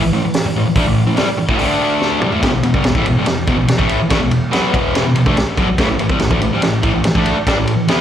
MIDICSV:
0, 0, Header, 1, 4, 480
1, 0, Start_track
1, 0, Tempo, 419287
1, 856, Time_signature, 4, 2, 24, 8
1, 9169, End_track
2, 0, Start_track
2, 0, Title_t, "Distorted electric guitar"
2, 0, Program_c, 0, 30
2, 151, Note_on_c, 0, 45, 62
2, 155, Note_on_c, 0, 52, 75
2, 265, Note_off_c, 0, 45, 0
2, 267, Note_off_c, 0, 52, 0
2, 642, Note_on_c, 0, 45, 74
2, 646, Note_on_c, 0, 52, 73
2, 749, Note_off_c, 0, 45, 0
2, 751, Note_off_c, 0, 52, 0
2, 870, Note_on_c, 0, 50, 89
2, 886, Note_on_c, 0, 57, 102
2, 976, Note_off_c, 0, 50, 0
2, 984, Note_off_c, 0, 57, 0
2, 997, Note_on_c, 0, 45, 69
2, 1002, Note_on_c, 0, 52, 79
2, 1178, Note_off_c, 0, 45, 0
2, 1181, Note_off_c, 0, 52, 0
2, 1224, Note_on_c, 0, 45, 66
2, 1224, Note_on_c, 0, 52, 71
2, 1327, Note_off_c, 0, 45, 0
2, 1332, Note_on_c, 0, 48, 96
2, 1338, Note_off_c, 0, 52, 0
2, 1343, Note_on_c, 0, 55, 97
2, 1446, Note_off_c, 0, 48, 0
2, 1452, Note_off_c, 0, 55, 0
2, 1700, Note_on_c, 0, 45, 80
2, 1717, Note_on_c, 0, 52, 92
2, 1814, Note_off_c, 0, 45, 0
2, 1814, Note_on_c, 0, 50, 84
2, 1828, Note_off_c, 0, 52, 0
2, 1828, Note_on_c, 0, 57, 82
2, 1842, Note_on_c, 0, 62, 89
2, 2525, Note_off_c, 0, 50, 0
2, 2529, Note_on_c, 0, 48, 101
2, 2533, Note_off_c, 0, 57, 0
2, 2540, Note_off_c, 0, 62, 0
2, 2542, Note_on_c, 0, 55, 111
2, 2637, Note_off_c, 0, 48, 0
2, 2642, Note_on_c, 0, 50, 75
2, 2650, Note_off_c, 0, 55, 0
2, 2659, Note_on_c, 0, 57, 87
2, 2755, Note_on_c, 0, 40, 94
2, 2760, Note_off_c, 0, 50, 0
2, 2769, Note_off_c, 0, 57, 0
2, 2774, Note_on_c, 0, 47, 91
2, 2867, Note_off_c, 0, 40, 0
2, 2873, Note_off_c, 0, 47, 0
2, 2881, Note_on_c, 0, 40, 65
2, 2887, Note_on_c, 0, 47, 78
2, 2999, Note_off_c, 0, 40, 0
2, 3004, Note_off_c, 0, 47, 0
2, 3013, Note_on_c, 0, 40, 62
2, 3018, Note_on_c, 0, 47, 64
2, 3133, Note_off_c, 0, 40, 0
2, 3136, Note_off_c, 0, 47, 0
2, 3137, Note_on_c, 0, 43, 82
2, 3154, Note_on_c, 0, 50, 102
2, 3248, Note_off_c, 0, 43, 0
2, 3257, Note_off_c, 0, 50, 0
2, 3263, Note_on_c, 0, 47, 67
2, 3267, Note_on_c, 0, 40, 62
2, 3378, Note_off_c, 0, 47, 0
2, 3380, Note_off_c, 0, 40, 0
2, 3389, Note_on_c, 0, 45, 81
2, 3400, Note_on_c, 0, 52, 96
2, 3494, Note_off_c, 0, 45, 0
2, 3496, Note_on_c, 0, 40, 62
2, 3499, Note_off_c, 0, 52, 0
2, 3499, Note_on_c, 0, 47, 66
2, 3615, Note_off_c, 0, 40, 0
2, 3616, Note_off_c, 0, 47, 0
2, 3628, Note_on_c, 0, 43, 79
2, 3637, Note_on_c, 0, 50, 86
2, 3731, Note_off_c, 0, 43, 0
2, 3735, Note_on_c, 0, 40, 60
2, 3738, Note_off_c, 0, 50, 0
2, 3742, Note_on_c, 0, 47, 60
2, 3927, Note_off_c, 0, 40, 0
2, 3930, Note_off_c, 0, 47, 0
2, 3971, Note_on_c, 0, 40, 85
2, 3984, Note_on_c, 0, 47, 85
2, 4075, Note_off_c, 0, 40, 0
2, 4084, Note_off_c, 0, 47, 0
2, 4088, Note_on_c, 0, 40, 67
2, 4097, Note_on_c, 0, 47, 69
2, 4193, Note_off_c, 0, 40, 0
2, 4216, Note_off_c, 0, 47, 0
2, 4321, Note_on_c, 0, 45, 91
2, 4328, Note_on_c, 0, 52, 92
2, 4339, Note_on_c, 0, 57, 94
2, 4561, Note_off_c, 0, 45, 0
2, 4564, Note_off_c, 0, 52, 0
2, 4570, Note_off_c, 0, 57, 0
2, 4694, Note_on_c, 0, 50, 92
2, 4707, Note_on_c, 0, 57, 94
2, 4808, Note_off_c, 0, 50, 0
2, 4813, Note_on_c, 0, 40, 62
2, 4814, Note_off_c, 0, 57, 0
2, 4817, Note_on_c, 0, 47, 72
2, 5006, Note_off_c, 0, 40, 0
2, 5008, Note_off_c, 0, 47, 0
2, 5166, Note_on_c, 0, 47, 86
2, 5177, Note_on_c, 0, 54, 95
2, 5188, Note_on_c, 0, 59, 91
2, 5391, Note_off_c, 0, 47, 0
2, 5398, Note_on_c, 0, 40, 86
2, 5405, Note_on_c, 0, 47, 91
2, 5409, Note_off_c, 0, 54, 0
2, 5415, Note_off_c, 0, 59, 0
2, 5421, Note_on_c, 0, 52, 95
2, 5760, Note_off_c, 0, 40, 0
2, 5764, Note_off_c, 0, 47, 0
2, 5772, Note_off_c, 0, 52, 0
2, 5778, Note_on_c, 0, 40, 64
2, 5784, Note_on_c, 0, 47, 69
2, 5880, Note_off_c, 0, 40, 0
2, 5888, Note_off_c, 0, 47, 0
2, 5894, Note_on_c, 0, 40, 62
2, 5901, Note_on_c, 0, 47, 69
2, 6016, Note_off_c, 0, 40, 0
2, 6016, Note_off_c, 0, 47, 0
2, 6021, Note_on_c, 0, 50, 88
2, 6040, Note_on_c, 0, 57, 102
2, 6132, Note_off_c, 0, 50, 0
2, 6142, Note_off_c, 0, 57, 0
2, 6382, Note_on_c, 0, 47, 103
2, 6399, Note_on_c, 0, 54, 104
2, 6493, Note_off_c, 0, 47, 0
2, 6501, Note_off_c, 0, 54, 0
2, 6629, Note_on_c, 0, 45, 91
2, 6645, Note_on_c, 0, 52, 97
2, 6736, Note_off_c, 0, 52, 0
2, 6737, Note_off_c, 0, 45, 0
2, 6750, Note_on_c, 0, 52, 71
2, 6753, Note_on_c, 0, 45, 72
2, 6858, Note_off_c, 0, 45, 0
2, 6860, Note_off_c, 0, 52, 0
2, 6872, Note_on_c, 0, 45, 65
2, 6874, Note_on_c, 0, 52, 72
2, 6985, Note_off_c, 0, 45, 0
2, 6986, Note_off_c, 0, 52, 0
2, 6993, Note_on_c, 0, 48, 92
2, 7004, Note_on_c, 0, 55, 94
2, 7094, Note_off_c, 0, 48, 0
2, 7099, Note_on_c, 0, 45, 64
2, 7101, Note_off_c, 0, 55, 0
2, 7105, Note_on_c, 0, 52, 73
2, 7213, Note_off_c, 0, 45, 0
2, 7218, Note_on_c, 0, 50, 89
2, 7222, Note_off_c, 0, 52, 0
2, 7233, Note_on_c, 0, 57, 86
2, 7331, Note_off_c, 0, 50, 0
2, 7339, Note_off_c, 0, 57, 0
2, 7341, Note_on_c, 0, 45, 67
2, 7345, Note_on_c, 0, 52, 73
2, 7460, Note_off_c, 0, 45, 0
2, 7463, Note_off_c, 0, 52, 0
2, 7473, Note_on_c, 0, 48, 80
2, 7484, Note_on_c, 0, 55, 93
2, 7579, Note_off_c, 0, 48, 0
2, 7584, Note_off_c, 0, 55, 0
2, 7585, Note_on_c, 0, 45, 67
2, 7588, Note_on_c, 0, 52, 68
2, 7775, Note_off_c, 0, 45, 0
2, 7776, Note_off_c, 0, 52, 0
2, 7812, Note_on_c, 0, 45, 90
2, 7827, Note_on_c, 0, 52, 95
2, 7929, Note_off_c, 0, 45, 0
2, 7936, Note_off_c, 0, 52, 0
2, 7943, Note_on_c, 0, 45, 68
2, 7949, Note_on_c, 0, 52, 81
2, 8058, Note_off_c, 0, 45, 0
2, 8065, Note_off_c, 0, 52, 0
2, 8190, Note_on_c, 0, 50, 87
2, 8200, Note_on_c, 0, 57, 98
2, 8206, Note_on_c, 0, 62, 105
2, 8418, Note_off_c, 0, 50, 0
2, 8423, Note_off_c, 0, 57, 0
2, 8426, Note_off_c, 0, 62, 0
2, 8548, Note_on_c, 0, 55, 94
2, 8563, Note_on_c, 0, 62, 101
2, 8658, Note_off_c, 0, 55, 0
2, 8663, Note_on_c, 0, 45, 67
2, 8665, Note_off_c, 0, 62, 0
2, 8666, Note_on_c, 0, 52, 79
2, 8854, Note_off_c, 0, 45, 0
2, 8856, Note_off_c, 0, 52, 0
2, 9017, Note_on_c, 0, 52, 88
2, 9032, Note_on_c, 0, 59, 97
2, 9036, Note_on_c, 0, 64, 100
2, 9169, Note_off_c, 0, 52, 0
2, 9169, Note_off_c, 0, 59, 0
2, 9169, Note_off_c, 0, 64, 0
2, 9169, End_track
3, 0, Start_track
3, 0, Title_t, "Muted distorted electric guitar strokes"
3, 41, Note_on_c, 9, 29, 60
3, 156, Note_off_c, 9, 29, 0
3, 283, Note_on_c, 9, 29, 62
3, 397, Note_off_c, 9, 29, 0
3, 524, Note_on_c, 9, 29, 61
3, 638, Note_off_c, 9, 29, 0
3, 763, Note_on_c, 9, 29, 51
3, 878, Note_off_c, 9, 29, 0
3, 1459, Note_on_c, 9, 29, 60
3, 1574, Note_off_c, 9, 29, 0
3, 1582, Note_on_c, 9, 29, 59
3, 1696, Note_off_c, 9, 29, 0
3, 4207, Note_on_c, 9, 29, 55
3, 4322, Note_off_c, 9, 29, 0
3, 4581, Note_on_c, 9, 29, 54
3, 4696, Note_off_c, 9, 29, 0
3, 6148, Note_on_c, 9, 29, 57
3, 6262, Note_off_c, 9, 29, 0
3, 6511, Note_on_c, 9, 29, 51
3, 6626, Note_off_c, 9, 29, 0
3, 8072, Note_on_c, 9, 29, 59
3, 8186, Note_off_c, 9, 29, 0
3, 8439, Note_on_c, 9, 29, 55
3, 8554, Note_off_c, 9, 29, 0
3, 9169, End_track
4, 0, Start_track
4, 0, Title_t, "Drums"
4, 386, Note_on_c, 9, 46, 66
4, 398, Note_on_c, 9, 38, 113
4, 501, Note_off_c, 9, 46, 0
4, 512, Note_off_c, 9, 38, 0
4, 867, Note_on_c, 9, 36, 119
4, 867, Note_on_c, 9, 46, 67
4, 981, Note_off_c, 9, 36, 0
4, 982, Note_off_c, 9, 46, 0
4, 1336, Note_on_c, 9, 46, 57
4, 1348, Note_on_c, 9, 38, 106
4, 1451, Note_off_c, 9, 46, 0
4, 1462, Note_off_c, 9, 38, 0
4, 1701, Note_on_c, 9, 36, 100
4, 1816, Note_off_c, 9, 36, 0
4, 1817, Note_on_c, 9, 46, 60
4, 1931, Note_off_c, 9, 46, 0
4, 2306, Note_on_c, 9, 38, 64
4, 2421, Note_off_c, 9, 38, 0
4, 2536, Note_on_c, 9, 45, 96
4, 2650, Note_off_c, 9, 45, 0
4, 2656, Note_on_c, 9, 43, 90
4, 2771, Note_off_c, 9, 43, 0
4, 2779, Note_on_c, 9, 36, 109
4, 2781, Note_on_c, 9, 51, 99
4, 2793, Note_on_c, 9, 38, 111
4, 2893, Note_off_c, 9, 36, 0
4, 2896, Note_off_c, 9, 51, 0
4, 2907, Note_off_c, 9, 38, 0
4, 3014, Note_on_c, 9, 51, 69
4, 3128, Note_off_c, 9, 51, 0
4, 3137, Note_on_c, 9, 36, 101
4, 3250, Note_on_c, 9, 51, 82
4, 3251, Note_off_c, 9, 36, 0
4, 3261, Note_on_c, 9, 38, 98
4, 3364, Note_off_c, 9, 51, 0
4, 3376, Note_off_c, 9, 38, 0
4, 3377, Note_on_c, 9, 36, 108
4, 3491, Note_off_c, 9, 36, 0
4, 3499, Note_on_c, 9, 51, 78
4, 3613, Note_off_c, 9, 51, 0
4, 3732, Note_on_c, 9, 51, 92
4, 3743, Note_on_c, 9, 38, 104
4, 3846, Note_off_c, 9, 51, 0
4, 3858, Note_off_c, 9, 38, 0
4, 3976, Note_on_c, 9, 51, 75
4, 3978, Note_on_c, 9, 36, 110
4, 4090, Note_off_c, 9, 51, 0
4, 4093, Note_off_c, 9, 36, 0
4, 4217, Note_on_c, 9, 51, 98
4, 4228, Note_on_c, 9, 38, 105
4, 4331, Note_off_c, 9, 51, 0
4, 4338, Note_on_c, 9, 36, 106
4, 4343, Note_off_c, 9, 38, 0
4, 4452, Note_off_c, 9, 36, 0
4, 4456, Note_on_c, 9, 51, 72
4, 4571, Note_off_c, 9, 51, 0
4, 4696, Note_on_c, 9, 51, 103
4, 4700, Note_on_c, 9, 36, 108
4, 4708, Note_on_c, 9, 38, 115
4, 4811, Note_off_c, 9, 51, 0
4, 4814, Note_off_c, 9, 36, 0
4, 4822, Note_off_c, 9, 38, 0
4, 4937, Note_on_c, 9, 51, 66
4, 5051, Note_off_c, 9, 51, 0
4, 5185, Note_on_c, 9, 51, 84
4, 5196, Note_on_c, 9, 38, 99
4, 5299, Note_off_c, 9, 51, 0
4, 5311, Note_off_c, 9, 38, 0
4, 5425, Note_on_c, 9, 36, 104
4, 5431, Note_on_c, 9, 51, 72
4, 5539, Note_off_c, 9, 36, 0
4, 5545, Note_off_c, 9, 51, 0
4, 5668, Note_on_c, 9, 51, 89
4, 5679, Note_on_c, 9, 38, 111
4, 5783, Note_off_c, 9, 51, 0
4, 5794, Note_off_c, 9, 38, 0
4, 5902, Note_on_c, 9, 51, 69
4, 6016, Note_off_c, 9, 51, 0
4, 6023, Note_on_c, 9, 36, 108
4, 6138, Note_off_c, 9, 36, 0
4, 6147, Note_on_c, 9, 51, 84
4, 6158, Note_on_c, 9, 38, 108
4, 6261, Note_off_c, 9, 51, 0
4, 6273, Note_off_c, 9, 38, 0
4, 6382, Note_on_c, 9, 36, 101
4, 6386, Note_on_c, 9, 51, 63
4, 6497, Note_off_c, 9, 36, 0
4, 6501, Note_off_c, 9, 51, 0
4, 6620, Note_on_c, 9, 36, 108
4, 6621, Note_on_c, 9, 51, 92
4, 6632, Note_on_c, 9, 38, 122
4, 6734, Note_off_c, 9, 36, 0
4, 6735, Note_off_c, 9, 51, 0
4, 6747, Note_off_c, 9, 38, 0
4, 6859, Note_on_c, 9, 51, 68
4, 6974, Note_off_c, 9, 51, 0
4, 6978, Note_on_c, 9, 36, 106
4, 7092, Note_off_c, 9, 36, 0
4, 7092, Note_on_c, 9, 51, 85
4, 7103, Note_on_c, 9, 38, 96
4, 7206, Note_off_c, 9, 51, 0
4, 7218, Note_off_c, 9, 38, 0
4, 7220, Note_on_c, 9, 36, 108
4, 7335, Note_off_c, 9, 36, 0
4, 7344, Note_on_c, 9, 51, 71
4, 7458, Note_off_c, 9, 51, 0
4, 7578, Note_on_c, 9, 51, 93
4, 7590, Note_on_c, 9, 38, 107
4, 7693, Note_off_c, 9, 51, 0
4, 7704, Note_off_c, 9, 38, 0
4, 7822, Note_on_c, 9, 36, 102
4, 7822, Note_on_c, 9, 51, 74
4, 7937, Note_off_c, 9, 36, 0
4, 7937, Note_off_c, 9, 51, 0
4, 8059, Note_on_c, 9, 51, 100
4, 8070, Note_on_c, 9, 38, 104
4, 8173, Note_off_c, 9, 51, 0
4, 8185, Note_off_c, 9, 38, 0
4, 8187, Note_on_c, 9, 36, 104
4, 8302, Note_off_c, 9, 36, 0
4, 8306, Note_on_c, 9, 51, 72
4, 8421, Note_off_c, 9, 51, 0
4, 8549, Note_on_c, 9, 36, 115
4, 8550, Note_on_c, 9, 51, 104
4, 8562, Note_on_c, 9, 38, 111
4, 8663, Note_off_c, 9, 36, 0
4, 8665, Note_off_c, 9, 51, 0
4, 8676, Note_off_c, 9, 38, 0
4, 8785, Note_on_c, 9, 51, 71
4, 8899, Note_off_c, 9, 51, 0
4, 9025, Note_on_c, 9, 51, 89
4, 9037, Note_on_c, 9, 38, 93
4, 9140, Note_off_c, 9, 51, 0
4, 9151, Note_off_c, 9, 38, 0
4, 9169, End_track
0, 0, End_of_file